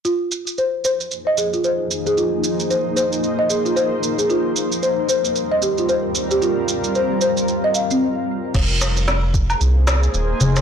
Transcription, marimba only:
X:1
M:4/4
L:1/16
Q:"Swing 16ths" 1/4=113
K:Fm
V:1 name="Marimba"
F z3 c z c z2 e A F c z2 A | F z3 c z c z2 e A F c z2 A | F z3 c z c z2 e G F c z2 G | F z3 c z c z2 e f C z4 |
z16 |]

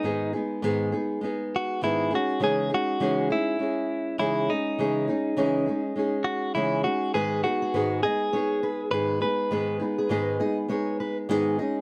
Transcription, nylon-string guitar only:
X:1
M:4/4
L:1/8
Q:"Swing 16ths" 1/4=101
K:G#m
V:1 name="Nylon-string guitar"
[G,,D,G,B,DG] [G,B,DG] [G,,D,G,B,DG] [G,B,DG] [G,B,DG]2 [G,,D,G,B,DG] [G,CDG] | [C,E,G,CDG] [G,CDG] [C,E,G,CDG] [G,CDG] [G,CG]2 [C,E,G,CDG] [G,CDG] | [C,E,G,CDG] [G,CDG] [C,E,G,CDG] [G,CDG] [G,CDG]2 [C,E,G,CDG] [G,CDG] | [G,,D,G,B,DG] [G,B,DG] [G,,D,G,B,DG] [G,B,DG] [G,B,DG]2 [G,,D,G,B,DG] [G,B,DG] |
[G,,D,G,B,DG] [G,B,DG] [G,,D,G,B,DG] [G,B,DG] [G,B,DG]2 [G,,D,G,B,DG] [G,CDG] |]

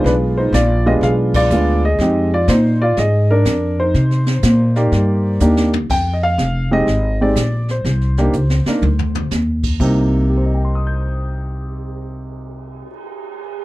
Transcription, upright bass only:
X:1
M:4/4
L:1/8
Q:"Swing" 1/4=123
K:Cm
V:1 name="Upright bass" clef=bass
=B,,,2 _B,,,2 =B,,,2 D,,2 | F,,2 B,,2 A,,2 F,,2 | C,2 B,,2 G,,2 E,,2 | F,,2 F,,,2 A,,,2 B,,,2 |
C,,2 _D,, z =D,,2 E,,2 | C,,8- | C,,8 |]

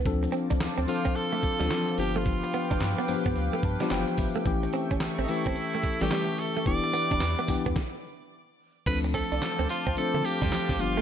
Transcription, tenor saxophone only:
X:1
M:4/4
L:1/16
Q:"Swing 16ths" 1/4=109
K:Ddor
V:1 name="Tenor saxophone"
z6 F2 A6 G F- | F4- F z8 z3 | z4 z3/2 _E/2 =E4- E G3 A2 | d8 z8 |
B2 A4 F2 A2 G4 F2 |]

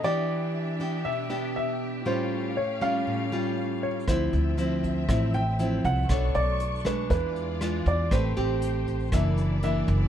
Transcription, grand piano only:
X:1
M:4/4
L:1/8
Q:1/4=119
K:Am
V:1 name="Grand piano"
d4 e2 e2 | ^B2 ^c ^e4 c | c4 e g2 ^f- | ^f d2 B B3 d |
c4 e2 e2 |]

